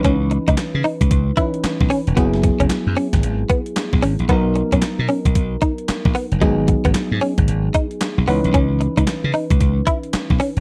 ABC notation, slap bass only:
X:1
M:4/4
L:1/16
Q:"Swing 16ths" 1/4=113
K:C#dor
V:1 name="Slap bass" clef=bass
C,,3 C,, z C, z C,, C,,2 z3 B,,, z E,,, | F,,,3 F,,, z F,, z G,,, G,,,2 z3 B,,, G,,, A,,, | B,,,3 B,,, z B,, z B,,, B,,,2 z3 A,,, z F,,, | G,,,3 G,,, z G,, z G,,, G,,,2 z3 B,,, C,, B,,, |
C,,3 C,, z C, z C,, C,,2 z3 B,,, z E,,, |]